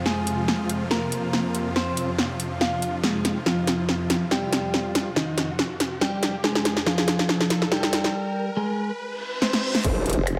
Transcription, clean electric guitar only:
0.06 G#3 G#4
0.91 A#3 A#4
1.76 C4 C5
2.61 F4 F5
3.03 G#3 G#4
3.46 F3 F4
4.31 G3 G4
5.16 D#3 D#4
6.01 G3 G4
6.44 G#3 G#4
6.86 F3 F4
7.71 G3 G4
8.57 G#3 G#4
9.42 C4 C5

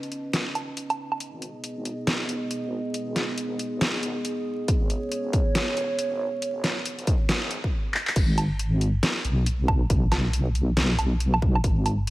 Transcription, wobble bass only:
1.20 G#1
2.51 G#1
3.38 G#1
4.68 G#1
5.99 G#1
6.86 G#1
8.16 G#1
9.25 B1
9.68 B1
10.99 B1
11.64 G#1

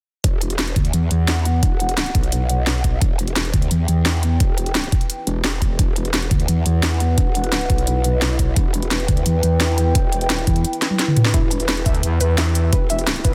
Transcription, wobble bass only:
0.24 E1
0.76 D2
0.93 E2
1.11 E2
1.63 E1
2.15 B1
3.02 E1
3.54 D2
3.71 E2
3.88 E2
4.40 E1
5.27 E1
5.79 E1
6.31 D2
6.48 E2
6.66 E2
7.18 E1
7.70 B1
8.56 E1
9.08 D2
9.26 E2
9.43 E2
9.95 E1
10.47 E2
11.34 E1
12.73 E1

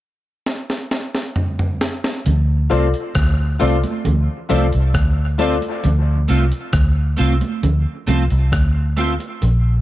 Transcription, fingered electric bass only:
2.27 D2
2.72 C2
3.16 D2
3.62 C2
4.06 D2
4.51 C2
4.75 C2
4.95 D2
5.85 D2
6.30 C2
6.74 D2
7.20 C2
7.64 D2
8.08 C2
8.32 C2
8.53 D2
9.43 A#1

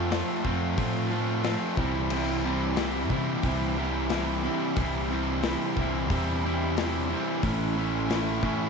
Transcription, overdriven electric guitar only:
Already playing: C4 F4
0.10 F3 A3 C4 F4
0.45 F3 A3 C4 F4
0.78 F3 A3 C4 F4
1.11 F3 A3 C4 F4
1.44 F3 A3 C4 F4
1.78 C3 E3 G3 C4 E4
2.11 C3 E3 G3 C4 E4
2.45 C3 E3 G3 C4 E4
2.78 C3 E3 G3 C4 E4
3.11 C3 E3 G3 C4 E4
3.44 C3 E3 G3 C4 E4
3.77 C3 E3 G3 C4 E4
4.10 C3 E3 G3 C4 E4
4.43 C3 E3 G3 C4 E4
4.77 C3 E3 G3 C4 E4
5.10 C3 E3 G3 C4 E4
5.43 C3 E3 G3 C4 E4
5.78 C3 E3 G3 C4 E4
6.11 C3 E3 G3 C4 E4
6.44 C3 E3 G3 C4 E4
6.78 C3 E3 G3 C4 E4
7.09 C3 E3 G3 C4 E4
7.43 A2 E3 A3 C#4 E4
7.76 A2 E3 A3 C#4 E4
8.09 A2 E3 A3 C#4 E4
8.43 A2 E3 A3 C#4 E4

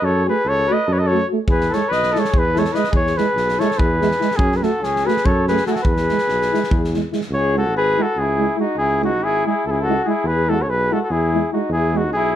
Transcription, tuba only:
0.02 F#2
0.44 C#2
0.88 F#2
1.47 E2
1.91 B1
2.34 E2
2.93 E2
3.35 B1
3.78 E2
4.38 F#2
4.81 C#2
5.25 F#2
5.85 E2
6.27 B1
6.70 E2
7.30 C#2
7.72 G#1
8.16 C#2
8.76 C#2
9.20 G#1
9.66 C#2
10.24 E2
10.68 B1
11.10 E2
11.69 E2
12.13 B1

